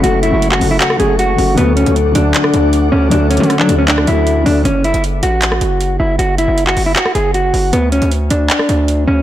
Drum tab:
HH |x-----x-----x-----o-----x-----x-----x-----o-----|x-----x--x--x-----x-----x-----x-----x-----------|x-----x-x-x-x-----x-----x-----x-----x-----o-----|x-----x--x--x-----x-----x-----x-----x-----------|
CP |---------------x--------x-----------------------|------------------------x-----------------------|---------------x--------x-----------------------|------------------------x-----------------------|
SD |---------------------------r--------------------|---------------------------r--------------------|------------r--------------r--------------------|---------------------------r--------------------|

HH |x-----x-----x-----o-----x-----x-----x-----o-----|x-----x--x--x-----x-----x-----x-----x-----------|
CP |---------------x--------x-----------------------|------------------------x-----------------------|
SD |---------------------------r--------------------|---------------------------r--------------------|